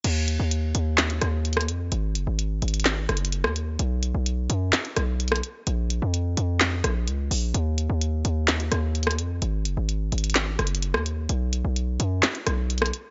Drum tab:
CC |x-----------------------------------------------------------------------------------------------|------------------------------------------------------------------------------------------------|------------------------------------------------------------------------------------------------|------------------------------------------------------------------------------------------------|
HH |x-----------x-----------x-----------x-----------x-----x-----x-----------x---x---x---x-----------|x-----------x-----------x-----------x--x--x--x--x-----------x---x---x---x-----------x-----------|x-----------x-----------x-----------x-----------x-----x-----x-----------x---x---x---x-----------|x-----------x-----------x-----------x-----------x-----------x-----------x-----------o-----------|
CP |------------------------------------------------x-----------------------------------------------|------------------------------------------------x-----------------------------------------------|------------------------------------------------x-----------------------------------------------|------------------------------------------------x-----------------------------------------------|
SD |------------------------------------------------o-----------r-----------------r-----------------|------------------------------------------------o-----------r-----------------r-----------------|------------------------------------------------o-----------r-----------------r-----------------|------------------------------------------------o-----------r-----------------------------------|

CC |------------------------------------------------------------------------------------------------|------------------------------------------------------------------------------------------------|------------------------------------------------------------------------------------------------|
HH |x-----------x-----------x-----------x-----------x-----x-----x-----------x---x---x---x-----------|x-----------x-----------x-----------x--x--x--x--x-----------x---x---x---x-----------x-----------|x-----------x-----------x-----------x-----------x-----x-----x-----------x---x---x---x-----------|
CP |------------------------------------------------x-----------------------------------------------|------------------------------------------------x-----------------------------------------------|------------------------------------------------x-----------------------------------------------|
SD |------------------------------------------------o-----------r-----------------r-----------------|------------------------------------------------o-----------r-----------------r-----------------|------------------------------------------------o-----------r-----------------r-----------------|